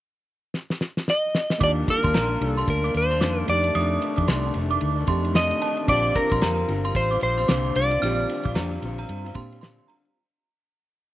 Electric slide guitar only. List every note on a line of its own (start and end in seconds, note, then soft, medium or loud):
1.10 1.63 D#5 loud
1.64 1.70 D5 loud
1.90 2.46 A#4 loud
2.46 2.69 A4 loud
2.70 2.94 A#4 medium
2.97 3.49 C5 medium
3.49 4.52 D5 medium
5.36 5.89 D#5 loud
5.89 6.16 D5 loud
6.16 6.96 A#4 loud
6.96 7.22 C5 loud
7.23 7.78 C5 loud
7.76 8.79 D5 medium